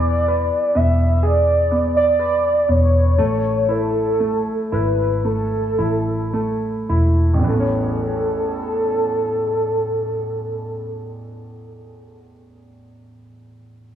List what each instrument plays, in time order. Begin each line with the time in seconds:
Already playing: fingered electric bass E1, grand piano E3 B3, soft synth lead D5
0.28 grand piano B4
0.75 fingered electric bass E1, grand piano B3, soft synth lead E5
1.23 grand piano G#4, soft synth lead D5
1.71 grand piano B3
1.97 soft synth lead D5
2.19 grand piano B4
2.69 fingered electric bass E1, grand piano B3, soft synth lead C#5
3.18 fingered electric bass A1, grand piano A3
3.69 grand piano E4, soft synth lead A4
4.20 grand piano A3
4.72 fingered electric bass G#1, grand piano E4, soft synth lead B4
5.25 grand piano A3, soft synth lead A4
5.78 fingered electric bass A1, grand piano E4
6.33 grand piano A3
6.89 fingered electric bass E1, grand piano E4
7.34 grand piano A1
7.39 grand piano E2
7.44 fingered electric bass A1, grand piano E3
7.48 grand piano A3, soft synth lead A4
7.55 grand piano B3
7.60 grand piano C#4